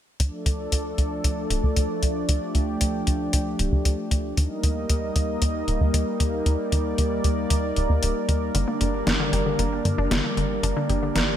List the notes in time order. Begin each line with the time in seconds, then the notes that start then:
0.20 D2 F3 A3 D4 A4 D5, closed hi-hat
0.46 D2, closed hi-hat
0.72 D2, closed hi-hat
0.98 D2, closed hi-hat
1.24 D2, closed hi-hat
1.50 D1, closed hi-hat
1.64 D2
1.76 D2, closed hi-hat
2.03 D2, closed hi-hat
2.29 D2 G4, closed hi-hat
2.55 D2, closed hi-hat
2.81 D2, closed hi-hat
3.07 D2, closed hi-hat
3.33 D2, closed hi-hat
3.59 D1, closed hi-hat
3.72 D2
3.85 D2, closed hi-hat
4.11 D2, closed hi-hat
4.37 D#2 G3 A#3 D#4 A#4 D#5, closed hi-hat
4.63 D#2, closed hi-hat
4.90 D#2, closed hi-hat
5.16 D#2, closed hi-hat
5.42 D#2, closed hi-hat
5.68 D#1, closed hi-hat
5.81 D#2
5.94 D#2, closed hi-hat
6.20 D#2, closed hi-hat
6.46 D#2 D5, closed hi-hat
6.72 D#2, closed hi-hat
6.98 D#2, closed hi-hat
7.24 D#2, closed hi-hat
7.50 D#2, closed hi-hat
7.76 D#1, closed hi-hat
7.90 D#2
8.03 D#1, closed hi-hat
8.29 D#2, closed hi-hat
8.55 G1 D3 G3 A#3 D4 D5, closed hi-hat
8.68 A#3
8.81 G1 D3, closed hi-hat
9.07 G1 D4, snare, closed hi-hat
9.20 D3
9.33 G1 G4, closed hi-hat
9.46 D3
9.59 G1 A#3, closed hi-hat
9.85 G2 D3, closed hi-hat
9.98 G1 D4
10.11 G1 D3, snare, closed hi-hat
10.24 A#3
10.37 G1 D3, closed hi-hat
10.63 G1 D4, closed hi-hat
10.77 D3
10.89 G1 G4, closed hi-hat
11.03 D3
11.15 G1 A#3, snare, closed hi-hat